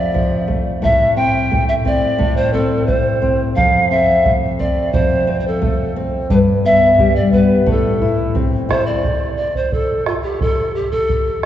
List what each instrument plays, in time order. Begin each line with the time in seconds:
Already playing: nylon-string guitar F2 A3, pan flute D5
0.14 nylon-string guitar F3, bombo low
0.48 nylon-string guitar A3, bombo low
0.82 nylon-string guitar A2, pan flute E5, bombo low
1.16 nylon-string guitar C4, pan flute G5
1.51 nylon-string guitar A3, bombo low
1.69 pan flute E5
1.85 nylon-string guitar C4, pan flute D5, bombo low
2.19 nylon-string guitar A2, bombo low
2.37 pan flute C5
2.53 nylon-string guitar C4, pan flute A4, bombo low
2.87 nylon-string guitar A3, pan flute C5, bombo low
3.22 nylon-string guitar C4, bombo low
3.56 nylon-string guitar F2, pan flute F5, bombo low
3.91 nylon-string guitar C4, pan flute E5
4.26 nylon-string guitar A3, bombo low
4.59 nylon-string guitar C4, pan flute D5, bombo low
4.93 nylon-string guitar F2, pan flute C5, bombo low
5.27 nylon-string guitar C4
5.40 pan flute C5
5.47 pan flute A4
5.62 nylon-string guitar A3, bombo low
5.96 nylon-string guitar C4
6.30 nylon-string guitar G2, pan flute B4, bombo low
6.65 nylon-string guitar B3, pan flute E5
6.99 nylon-string guitar G3, bombo low
7.16 pan flute D5
7.33 nylon-string guitar B3, pan flute B4, bombo low
7.66 nylon-string guitar A2, bombo low
7.71 pan flute A4
8.01 nylon-string guitar E4, bombo low
8.35 nylon-string guitar C4, bombo low
8.69 nylon-string guitar E4, pan flute C5, bombo rim, bombo low
8.86 pan flute D5
9.04 bombo low
9.37 pan flute D5
9.55 pan flute C5, bombo low
9.72 pan flute A4, bombo low
10.06 pan flute F4, bombo rim
10.24 pan flute G4
10.41 pan flute A4, bombo low
10.75 pan flute G4
10.92 pan flute A4, bombo low
11.09 bombo low